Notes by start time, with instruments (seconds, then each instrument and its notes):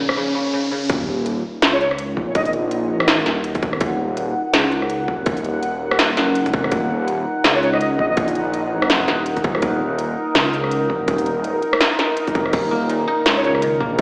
Already playing: detuned saw bass A#1, koto A#3 D#4, ambient pad D#4 A#4 F5 G#5, riser
0.00 koto A#2
0.09 cross-stick
0.17 koto C#3
0.35 koto C#3
0.53 koto C#3
0.72 koto C#3
0.89 detuned saw bass D#1, ambient pad D#4, kick, closed hi-hat, sub drop
1.02 ambient pad A#4
1.16 ambient pad F#5
1.26 closed hi-hat
1.62 detuned saw bass C#2, cross-stick, snare, closed hi-hat
1.73 flute C#5
1.81 flute C#5, open hi-hat
1.91 cross-stick
1.98 closed hi-hat
2.17 detuned saw bass A#1, kick
2.35 flute D#5, kick, closed hi-hat
2.45 flute D#5, open hi-hat
2.53 closed hi-hat
2.71 closed hi-hat
2.93 detuned saw bass A1
3.00 cross-stick
3.08 snare, closed hi-hat
3.26 detuned saw bass D#1, snare, closed hi-hat
3.44 closed hi-hat
3.55 kick, open hi-hat
3.62 kick, closed hi-hat
3.73 cross-stick
3.81 detuned saw bass D#1, kick, closed hi-hat
4.17 closed hi-hat
4.54 detuned saw bass C#2, cross-stick, snare, closed hi-hat
4.72 open hi-hat
4.82 cross-stick
4.90 closed hi-hat
5.08 detuned saw bass D#1, kick
5.26 kick, closed hi-hat
5.37 open hi-hat
5.44 closed hi-hat
5.63 closed hi-hat
5.91 cross-stick
5.99 snare, closed hi-hat
6.17 detuned saw bass F#1, snare, closed hi-hat
6.35 closed hi-hat
6.46 kick, open hi-hat
6.53 detuned saw bass F1, kick, closed hi-hat
6.64 cross-stick
6.71 detuned saw bass D#1, kick, closed hi-hat
7.08 closed hi-hat
7.44 detuned saw bass C#2, cross-stick, snare, closed hi-hat
7.55 flute C#5
7.63 flute C#5, open hi-hat
7.73 flute D#5, cross-stick
7.81 flute D#5, closed hi-hat
7.99 detuned saw bass A#1, flute D#5, kick
8.10 flute D#5
8.17 kick, closed hi-hat
8.28 open hi-hat
8.35 closed hi-hat
8.54 closed hi-hat
8.82 cross-stick
8.90 snare, closed hi-hat
9.08 detuned saw bass D#1, snare, closed hi-hat
9.26 closed hi-hat
9.36 kick, open hi-hat
9.44 kick, closed hi-hat
9.55 cross-stick
9.62 detuned saw bass D#1, kick, closed hi-hat
9.99 closed hi-hat
10.35 detuned saw bass C#2, cross-stick, snare, closed hi-hat
10.53 open hi-hat
10.64 cross-stick
10.71 closed hi-hat
10.90 detuned saw bass D#1, kick
11.08 kick, closed hi-hat
11.18 open hi-hat
11.26 closed hi-hat
11.40 detuned saw bass D1
11.44 closed hi-hat
11.62 closed hi-hat
11.73 cross-stick
11.81 snare, closed hi-hat, swell
11.99 snare, closed hi-hat
12.17 closed hi-hat
12.27 kick, open hi-hat
12.35 detuned saw bass F1, kick, closed hi-hat
12.46 cross-stick
12.53 detuned saw bass D#1, koto D#3, kick, closed hi-hat, crash
12.71 koto A#3
12.89 koto A#2, closed hi-hat
13.08 koto D#4
13.26 detuned saw bass C#2, koto C#3, cross-stick, snare, closed hi-hat
13.37 flute C#5
13.44 koto A#2, flute C#5, open hi-hat
13.55 cross-stick
13.62 koto D#3, ambient pad G#5, closed hi-hat
13.80 detuned saw bass A#1, koto A#3, kick